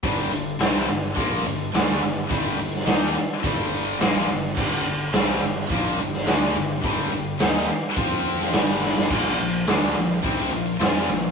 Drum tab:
CC |----------------|----------------|x---------------|----------------|
HH |o-o-o-o-o-o-o-o-|o-o-o-o-o-o-o-o-|--o-o-o-o-o-o-o-|o-o-o-o-o-o-o---|
SD |----o-------o---|---oo-------o---|----o------oo---|----o------oo-oo|
BD |o-------o-------|o-------o-------|o-------o-------|o-------o-------|

CC |x---------------|
HH |--o-o-o-o-o-o-o-|
SD |----o-------o---|
BD |o-------o-------|